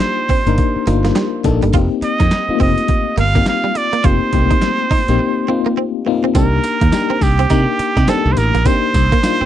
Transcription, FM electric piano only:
Already playing: A#3 D4 D#4 F4 G4
0.46 A#3 D4 D#4 A#4
0.87 A#3 D4 D#4 F4
1.44 A#3 D4 D#4 A4
1.73 A#3 C4 D#4 G4
2.49 A3 C4 D#4 F4
2.55 A#3
3.35 A#3 C4 D#4 G4
4.04 A#3 C4 D#4 G4
4.33 A3 C4 D#4 G4
4.40 A#3
5.08 A#3 C4 D#4 G4
5.48 A#3 C4 D#4 F4
6.06 A#3 C4 D#4 F4
6.35 A#3 D4 D#4 G4
6.92 A#3 D4 D#4 G4
7.50 A#3 D4 D#4 A#4
8.08 A#3 D4 D#4 G4
8.65 A#3 D4 D#4 G4
9.23 A#3 D4 D#4 F4

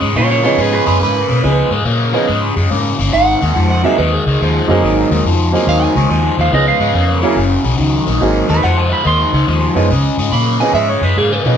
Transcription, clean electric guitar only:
0.16 F4 C#5
0.30 F4 C#5
0.44 F4 C#5
0.60 G#4 B4
0.73 G#4 B4
0.87 G#4 B4
1.03 B4
3.13 F#5
3.70 F#5
3.85 E5
3.98 B4
4.13 G#4
5.69 F5
5.83 G#5
6.41 F5
6.54 D#5
6.68 F5
8.50 B4
8.64 F#5
8.78 G#5
8.93 B5
9.07 C6
10.33 B5
10.60 G#5
10.74 E5
10.89 C#5
11.04 B4
11.18 G#4
11.33 B4

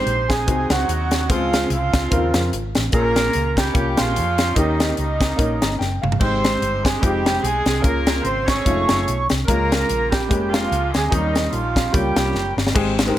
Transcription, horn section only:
Already playing: C4 D#4 G4 C5
0.30 G#3 D#4 G#4
0.73 F#3 D#4 F#4
1.30 F3 G#3 C4 F4
1.71 F3 G#3 C4 F4
2.95 A#3 C#4 F4 A#4
3.59 G3 C#4 G4
3.98 F3 G#3 C#4 F4
4.57 D#3 G3 A#3 D#4
4.98 D#3 G3 A#3 D#4
6.21 C4 D#4 G4 C5
6.84 G#3 G#4
7.00 G3 C4 D#4 G4
7.42 G#3 C4 D#4 G#4
7.80 A#3 F4 A#4
8.21 C4 C5
8.45 A3 C#4 G#4 A4 C#5
9.46 A#3 F4 A#4
10.10 G3 A#3 G4
10.49 F3 G#3 A#3 F4
10.91 G#3 G#4
11.10 D#3 G3 A#3 D#4
11.51 F3 A#3 C#4 F4
11.93 G3 A#3 C#4 G4

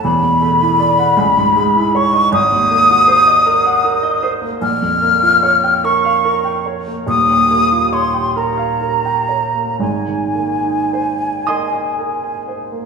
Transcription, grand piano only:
0.04 E1 E2
0.23 B2
0.42 A3
0.62 E4
0.79 D5
0.98 F#5
1.17 C#2
1.37 G#2
1.56 G#3
1.76 E4
1.95 C#5
2.13 D#5
2.32 G#1
2.52 D#2
2.71 A#3
2.90 F#4
3.08 C5
3.27 D#5
3.46 A#4
3.65 F#5
3.84 A#4
4.03 D#5
4.23 C5
4.42 A#3
4.61 A#1
4.82 F2
5.02 A#3
5.22 F4
5.43 C#5
5.64 G5
5.84 A#4
6.05 F5
6.25 A#4
6.44 G5
6.66 C#5
6.87 A#3
7.07 D#1 D#2
7.29 A#2
7.51 A#3
7.72 F4
7.92 C#5
8.14 G5
8.36 A#4
8.58 F5
8.81 A#4
9.05 G5
9.29 C#5
9.54 A#3
9.79 G#1 G#2
10.08 D#3
10.35 A#3
10.64 D#4
10.93 C5
11.22 G#5
11.47 A#4 D#5 G#5 C6 D#6
11.73 D#5
11.98 A#4
12.24 G#5
12.48 C5
12.72 A#3

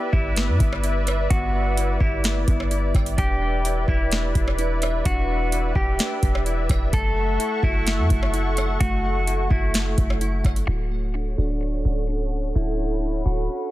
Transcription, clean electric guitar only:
0.13 E4
1.30 F#4
2.01 E4
3.18 G4
3.89 E4
5.06 F#4
5.76 G4
6.94 A4
7.64 E4
8.80 F#4
9.51 E4
10.67 F#4
11.38 D4
12.56 E4
13.26 F#4

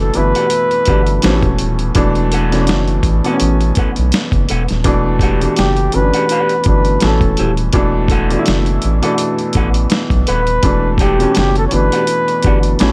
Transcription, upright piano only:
Already playing: B2 E3 A3 D4
0.14 B2 E3 A3 E4
0.87 B2 E3 A3 D4
1.22 B2 E3 A3 C#4
1.95 B2 E3 A3 D4
2.52 B2 E3 A3 C#4
2.61 D4
3.24 B2 E3 A3 B3
3.33 C#4
4.84 B2 E3 A3 D4
5.41 B2 E3 A3 D4
5.92 B2 E3 A3 C#4
6.02 D4
6.65 B2 E3 A3 D4
7.01 B2 E3 A3 C#4
7.73 B2 E3 A3 D4
8.30 B2 E3 A3 D4
8.39 E4
9.02 B2 E3 A3 D4
10.63 B2 E3 A3 D4
11.19 B2 E3 A3 C#4
11.71 B2 E3 A3 D4
12.43 B2 E3 A3 D4
12.79 B2 E3 A3 C#4

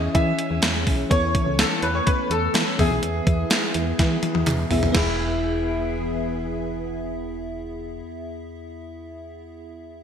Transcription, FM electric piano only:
Already playing: E3 C#4 E4 G#4 E5
1.10 E3 B3 E4 A4 C#5
2.78 E3 B3 E4 G#4 E5
4.71 B3 E4 G#4 E5
4.92 E2 B3 E4 G#4
4.97 E5

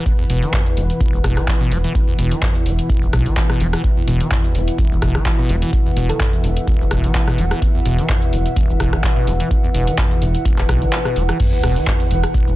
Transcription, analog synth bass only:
0.30 E1
0.77 E1
1.13 E1
1.24 E1
1.71 E1
2.19 E1
2.66 E1
3.02 E1
3.13 B1
3.60 E1
4.08 E1
4.55 E1
4.91 E1
5.02 E1
5.49 E1
5.97 E1
6.44 E1
6.80 E1
6.91 E1
7.38 E1
7.86 E1
8.33 E1
8.69 E1
8.80 E1
9.27 E1
9.75 E1
10.22 E1
10.58 E1
10.69 B1
11.16 E1
11.64 E1
12.11 E1
12.47 E1

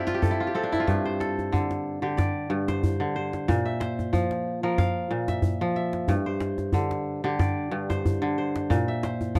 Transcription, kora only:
Already playing: F3 C4 D4 G4 A4 C5 D5
0.00 E4
0.07 F4
0.14 G4
0.22 A4
0.31 E4
0.40 F4
0.47 G4
0.55 C4 A4
0.63 D4
0.72 E4
0.80 F4
0.87 G2
1.05 C5
1.20 A4
1.52 D3
2.02 D3 G4
2.17 D5
2.50 G2
2.68 C5
3.00 D3
3.16 C5
3.48 A#2
3.65 E5
3.80 C5
4.13 F3
4.63 F3 A#4
4.78 F5
5.11 A#2
5.28 E5
5.61 F3
5.76 E5
6.09 G2
6.26 C5
6.74 D3
7.24 D3 G4
7.39 D5
7.71 G2
7.90 C5
8.22 D3
8.38 C5
8.70 A#2
8.88 E5
9.03 C5
9.35 F3

